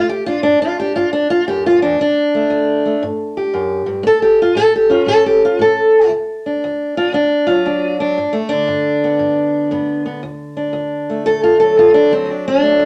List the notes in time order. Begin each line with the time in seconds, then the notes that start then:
Already playing: G2
0.09 G4
0.26 D4 F4
0.43 G2 D4
0.62 F4
0.80 D4 G4
0.96 G2 F4
1.13 D4
1.30 F4
1.48 F#2 G4
1.66 F4
1.82 E2 D4
1.99 D2 D4
2.35 A3
2.50 D2
2.86 A3
3.03 G2
3.37 G4
3.53 F#2
3.86 G2
4.03 A2 A4
4.22 G4
4.42 F4
4.55 A2 A4
4.76 G4
4.89 C#4 F4
5.06 A2 A4
5.26 G4
5.45 F4
5.59 A2 A4
6.09 D2
6.46 D4
6.64 D2
6.97 D4 F4
7.13 D2 D4
7.47 F#3 F4
7.66 D2 D4
8.00 F#3 D4
8.18 G2
8.33 A3
8.49 D3 D4
8.68 G2
9.04 B3
9.19 G2
9.71 G2 B3
10.06 B3
10.23 D2
10.57 D4
10.73 D2
11.10 A3
11.26 D2 A4
11.44 F4
11.60 F#3 A4
11.77 D2 F4
11.94 D4
12.11 F#3 C4
12.26 D2
12.30 D4
12.48 D4
12.62 A3
12.79 D2